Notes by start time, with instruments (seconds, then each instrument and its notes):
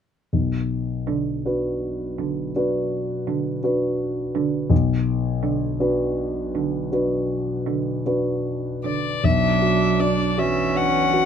0.33 grand piano B1
1.07 cello D3
1.45 grand piano D4 F#4 B4
2.18 cello D3
2.56 grand piano D4 F#4 B4
3.27 cello D3
3.63 grand piano D4 F#4 B4
4.35 cello D3
4.70 grand piano B1
5.43 cello D3
5.80 grand piano D4 F#4 B4
6.55 cello D3
6.92 grand piano D4 F#4 B4
7.66 cello D3
8.06 grand piano D4 F#4 B4
8.84 cello D3, violin D5
9.24 grand piano B1, cello F#3, viola D4, violin E5
9.62 grand piano F#4
10.00 grand piano D4, violin D5
10.38 cello E3, viola C#4, grand piano F#4, violin E5
10.74 grand piano D4, violin F#5
11.13 grand piano F#4